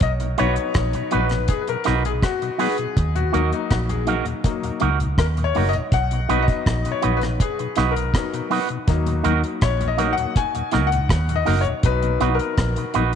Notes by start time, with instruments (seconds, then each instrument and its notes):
0.00 fingered electric bass B1, grand piano D#5, kick, closed hi-hat
0.20 tonewheel organ B2, closed hi-hat
0.38 fingered electric bass B1, grand piano F#3 B3 D#4 C#5, tonewheel organ F#3 B3 D#4, clean electric guitar D#4 F#4 B4, closed hi-hat
0.56 closed hi-hat
0.74 fingered electric bass A#1, kick, cross-stick, closed hi-hat
0.93 tonewheel organ B2, closed hi-hat
1.11 fingered electric bass A#1, tonewheel organ F#3 B3 D#4, clean electric guitar D#4 F#4 B4, grand piano B4, closed hi-hat
1.29 tonewheel organ B2, cross-stick, closed hi-hat
1.48 grand piano G#4, kick, closed hi-hat
1.61 grand piano B4
1.67 tonewheel organ B2, grand piano A#4, closed hi-hat
1.84 fingered electric bass B1, tonewheel organ F#3 B3 D#4, clean electric guitar D#4 F#4 B4, cross-stick, closed hi-hat
2.05 tonewheel organ B2, grand piano G#4, closed hi-hat
2.23 grand piano F#4, kick, cross-stick, closed hi-hat
2.42 tonewheel organ B2, closed hi-hat
2.58 tonewheel organ F#3 B3 D#4, clean electric guitar D#4 F#4 B4, grand piano G#4, open hi-hat
2.78 tonewheel organ B2, closed hi-hat
2.97 fingered electric bass D#2, kick, closed hi-hat
3.15 tonewheel organ D#2 A#2, grand piano F#4, closed hi-hat
3.32 fingered electric bass D#2, tonewheel organ F#3 A#3 D#4, grand piano F#3 A#3 D#4, clean electric guitar D#4 F#4 A#4, closed hi-hat
3.52 grand piano D#4, closed hi-hat
3.70 fingered electric bass A#1, grand piano F#4, kick, cross-stick, closed hi-hat
3.89 tonewheel organ D#2 A#2, grand piano G#4, closed hi-hat
4.05 tonewheel organ F#3 A#3 D#4, clean electric guitar D#4 F#4 A#4, closed hi-hat
4.25 tonewheel organ D#2 A#2, closed hi-hat
4.44 grand piano F#3 A#3 D#4, kick, closed hi-hat
4.63 tonewheel organ D#2 A#2, closed hi-hat
4.80 fingered electric bass C#2, tonewheel organ F#3 A#3 D#4, clean electric guitar D#4 F#4 A#4, closed hi-hat
5.00 tonewheel organ D#2 A#2, closed hi-hat
5.18 fingered electric bass D#2, grand piano A#4, kick, cross-stick, closed hi-hat
5.37 tonewheel organ D#2 A#2, closed hi-hat
5.44 grand piano C#5
5.55 fingered electric bass F#1, tonewheel organ F#3 A#3 D#4, clean electric guitar D#4 F#4 A#4, open hi-hat
5.69 grand piano D#5
5.73 tonewheel organ D#2 A#2, closed hi-hat
5.92 fingered electric bass B1, grand piano F#5, kick, closed hi-hat
6.11 tonewheel organ B2, closed hi-hat
6.29 fingered electric bass B1, grand piano F#3 B3 D#4, tonewheel organ F#3 B3 D#4, clean electric guitar D#4 F#4 B4, closed hi-hat
6.42 grand piano D#5
6.48 kick, closed hi-hat
6.66 fingered electric bass A#1, kick, cross-stick, closed hi-hat
6.85 tonewheel organ B2, closed hi-hat
6.92 grand piano C#5
7.02 fingered electric bass A#1, tonewheel organ F#3 B3 D#4, clean electric guitar D#4 F#4 B4, closed hi-hat
7.17 grand piano B4
7.22 tonewheel organ B2, cross-stick, closed hi-hat
7.40 grand piano G#4, kick, closed hi-hat
7.59 tonewheel organ B2, closed hi-hat
7.76 fingered electric bass B1, tonewheel organ F#3 B3 D#4, clean electric guitar D#4 F#4 B4, cross-stick, closed hi-hat
7.91 grand piano A#4
7.96 tonewheel organ B2, closed hi-hat
8.14 grand piano F#3 B3 D#4, kick, cross-stick, closed hi-hat
8.34 tonewheel organ B2, closed hi-hat
8.50 tonewheel organ F#3 B3 D#4, clean electric guitar D#4 F#4 B4, open hi-hat
8.69 tonewheel organ B2, closed hi-hat
8.87 fingered electric bass D#2, grand piano F#3 A#3 D#4, kick, closed hi-hat
9.06 tonewheel organ D#2 A#2, closed hi-hat
9.23 fingered electric bass D#2, tonewheel organ F#3 A#3 D#4, clean electric guitar D#4 F#4 A#4, closed hi-hat
9.44 closed hi-hat
9.61 fingered electric bass A#1, grand piano C#5, kick, cross-stick, closed hi-hat
9.81 tonewheel organ D#2 A#2, closed hi-hat
9.88 grand piano D#5
9.97 tonewheel organ F#3 A#3 D#4, grand piano F#3 A#3 D#4, clean electric guitar D#4 F#4 A#4, closed hi-hat
10.13 grand piano F#5
10.18 tonewheel organ D#2 A#2, closed hi-hat
10.36 grand piano G#5, kick, closed hi-hat
10.54 tonewheel organ D#2 A#2, closed hi-hat
10.71 fingered electric bass C#2, tonewheel organ F#3 A#3 D#4, clean electric guitar D#4 F#4 A#4, cross-stick, closed hi-hat
10.87 grand piano F#5
10.92 tonewheel organ D#2 A#2, closed hi-hat
11.09 fingered electric bass D#2, kick, cross-stick, closed hi-hat
11.29 tonewheel organ D#2 A#2, closed hi-hat
11.36 grand piano D#5
11.45 fingered electric bass F#1, tonewheel organ F#3 A#3 D#4, clean electric guitar D#4 F#4 A#4, open hi-hat
11.61 grand piano C#5, closed hi-hat
11.67 tonewheel organ D#2 A#2
11.83 fingered electric bass B1, grand piano F#3 B3 D#4 B4, kick, closed hi-hat
12.03 tonewheel organ B2, closed hi-hat
12.20 fingered electric bass B1, tonewheel organ F#3 B3 D#4, clean electric guitar D#4 F#4 B4, closed hi-hat
12.35 grand piano A#4
12.39 closed hi-hat
12.57 fingered electric bass A#1, kick, cross-stick, closed hi-hat
12.76 tonewheel organ B2, closed hi-hat
12.94 fingered electric bass A#1, tonewheel organ F#3 B3 D#4, clean electric guitar D#4 F#4 B4, closed hi-hat